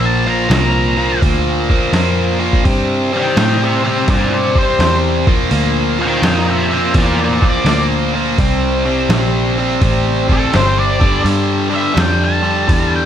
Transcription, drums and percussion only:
0.51 snare, open hi-hat
1.22 kick, open hi-hat
1.70 kick
1.93 snare, open hi-hat
2.53 kick
2.65 kick, open hi-hat
3.37 snare, open hi-hat
4.08 kick, open hi-hat
4.56 kick
4.80 snare, open hi-hat
5.27 kick
5.51 open hi-hat
6.23 snare, open hi-hat
6.94 kick, open hi-hat
7.42 kick
7.66 snare, open hi-hat
8.38 kick, open hi-hat
9.10 snare, open hi-hat
9.82 kick, open hi-hat
10.29 kick
10.53 snare, open hi-hat
11.01 kick
11.26 open hi-hat
11.97 snare, open hi-hat
12.69 kick, open hi-hat

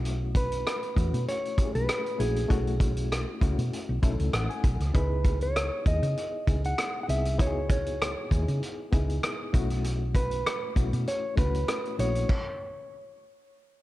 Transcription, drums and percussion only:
0.05 closed hi-hat
0.35 kick, closed hi-hat
0.52 closed hi-hat
0.67 cross-stick, closed hi-hat
0.83 closed hi-hat
0.96 kick, closed hi-hat
1.14 closed hi-hat
1.28 closed hi-hat
1.45 closed hi-hat
1.58 kick, closed hi-hat
1.75 closed hi-hat
1.89 cross-stick, closed hi-hat
2.06 closed hi-hat
2.20 closed hi-hat
2.36 closed hi-hat
2.50 kick, closed hi-hat
2.67 closed hi-hat
2.80 kick, closed hi-hat
2.97 closed hi-hat
3.12 cross-stick, closed hi-hat
3.41 kick, cross-stick, closed hi-hat
3.59 closed hi-hat
3.73 closed hi-hat
4.03 kick, closed hi-hat
4.20 closed hi-hat
4.33 cross-stick, closed hi-hat
4.50 closed hi-hat
4.64 kick, closed hi-hat
4.80 cross-stick, closed hi-hat
4.94 kick, closed hi-hat
5.25 kick, closed hi-hat
5.41 closed hi-hat
5.56 cross-stick, closed hi-hat
5.86 kick, closed hi-hat
6.03 closed hi-hat
6.17 closed hi-hat
6.47 kick, closed hi-hat
6.64 closed hi-hat
6.78 cross-stick, closed hi-hat
7.09 closed hi-hat
7.25 closed hi-hat
7.39 kick, closed hi-hat
7.70 kick, closed hi-hat
7.86 closed hi-hat
8.02 cross-stick, closed hi-hat
8.31 kick, closed hi-hat
8.48 closed hi-hat
8.63 closed hi-hat
8.93 kick, closed hi-hat
9.10 closed hi-hat
9.23 cross-stick, closed hi-hat
9.54 kick, closed hi-hat
9.70 cross-stick, closed hi-hat
9.84 closed hi-hat
10.15 kick, closed hi-hat
10.31 closed hi-hat
10.46 cross-stick, closed hi-hat
10.76 kick, closed hi-hat
10.93 closed hi-hat
11.07 closed hi-hat
11.37 kick, closed hi-hat
11.54 closed hi-hat
11.68 cross-stick, closed hi-hat
11.85 closed hi-hat
11.99 closed hi-hat
12.15 closed hi-hat
12.29 kick, crash

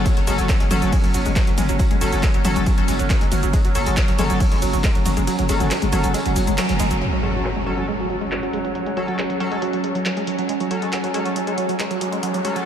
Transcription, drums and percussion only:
0.06 kick, closed hi-hat, ride, tambourine, shaker
0.17 closed hi-hat, ride
0.27 open hi-hat, ride, tambourine, shaker
0.38 closed hi-hat, ride, shaker
0.49 kick, snare, clap, closed hi-hat, ride, tambourine, shaker
0.60 closed hi-hat, ride
0.71 snare, open hi-hat, mid tom, ride, tambourine, shaker
0.82 snare, closed hi-hat, ride, shaker
0.92 kick, closed hi-hat, open hi-hat, ride, shaker
1.04 closed hi-hat, ride
1.13 open hi-hat, ride, tambourine, shaker
1.26 closed hi-hat, ride, shaker
1.35 kick, snare, clap, closed hi-hat, ride, tambourine, shaker
1.47 closed hi-hat, ride
1.57 open hi-hat, mid tom, ride, tambourine, shaker
1.69 closed hi-hat, ride, shaker
1.79 kick, closed hi-hat, ride, tambourine, shaker
1.91 closed hi-hat, ride
2.01 open hi-hat, ride, tambourine, shaker
2.12 snare, closed hi-hat, ride, shaker
2.23 kick, snare, clap, closed hi-hat, ride, tambourine, shaker
2.34 closed hi-hat, ride
2.44 open hi-hat, mid tom, ride, tambourine, shaker
2.56 closed hi-hat, ride, shaker
2.66 kick, closed hi-hat, ride, tambourine, shaker
2.78 closed hi-hat, ride
2.88 open hi-hat, ride, tambourine, shaker
2.99 closed hi-hat, ride, shaker
3.10 kick, snare, clap, closed hi-hat, ride, tambourine, shaker
3.21 closed hi-hat, ride
3.31 open hi-hat, mid tom, ride, tambourine, shaker
3.43 closed hi-hat, ride, shaker
3.53 kick, closed hi-hat, ride, tambourine, shaker
3.65 closed hi-hat, ride
3.75 open hi-hat, ride, tambourine, shaker
3.86 closed hi-hat, ride, shaker
3.97 kick, snare, clap, closed hi-hat, ride, tambourine, shaker
4.08 closed hi-hat, ride
4.18 snare, open hi-hat, mid tom, ride, tambourine, shaker
4.30 snare, closed hi-hat, ride, shaker
4.40 kick, closed hi-hat, open hi-hat, ride, shaker
4.52 closed hi-hat, ride
4.62 open hi-hat, ride, tambourine, shaker
4.73 closed hi-hat, ride, shaker
4.83 kick, snare, clap, closed hi-hat, ride, tambourine, shaker
4.95 closed hi-hat, ride
5.05 open hi-hat, mid tom, ride, tambourine, shaker
5.17 closed hi-hat, ride, shaker
5.27 closed hi-hat, ride, tambourine, shaker
5.39 closed hi-hat, ride
5.49 open hi-hat, ride, tambourine, shaker
5.60 snare, closed hi-hat, mid tom, ride, shaker
5.71 snare, clap, closed hi-hat, ride, tambourine, shaker
5.82 closed hi-hat, ride
5.93 open hi-hat, mid tom, ride, tambourine, shaker
6.03 closed hi-hat, ride, shaker
6.14 closed hi-hat, ride, tambourine, shaker
6.26 closed hi-hat, ride
6.36 open hi-hat, ride, tambourine, shaker
6.47 closed hi-hat, ride, shaker
6.58 snare, clap, closed hi-hat, ride, tambourine, shaker
6.69 closed hi-hat, ride
6.80 open hi-hat, mid tom, ride, tambourine, shaker
6.91 closed hi-hat, ride, shaker
7.01 closed hi-hat
7.13 closed hi-hat
7.23 open hi-hat
7.34 closed hi-hat
7.45 clap, closed hi-hat
7.56 closed hi-hat
7.66 open hi-hat
7.78 closed hi-hat
7.88 closed hi-hat
8.00 closed hi-hat
8.10 open hi-hat
8.21 closed hi-hat
8.32 clap, closed hi-hat
8.43 closed hi-hat
8.53 open hi-hat
8.65 closed hi-hat
8.75 closed hi-hat
8.86 closed hi-hat
8.97 open hi-hat
9.08 closed hi-hat
9.19 clap, closed hi-hat
9.30 closed hi-hat
9.40 open hi-hat
9.52 closed hi-hat
9.62 closed hi-hat
9.73 closed hi-hat
9.84 open hi-hat
9.95 closed hi-hat
10.06 clap, closed hi-hat
10.17 closed hi-hat
10.27 open hi-hat
10.39 closed hi-hat
10.49 closed hi-hat
10.60 closed hi-hat
10.71 open hi-hat
10.82 closed hi-hat
10.93 clap, closed hi-hat
11.04 closed hi-hat
11.14 open hi-hat
11.26 closed hi-hat
11.36 closed hi-hat
11.47 closed hi-hat
11.58 open hi-hat
11.69 closed hi-hat
11.80 clap, closed hi-hat
11.91 closed hi-hat
12.01 open hi-hat
12.12 closed hi-hat
12.23 closed hi-hat
12.34 closed hi-hat
12.45 open hi-hat
12.56 closed hi-hat

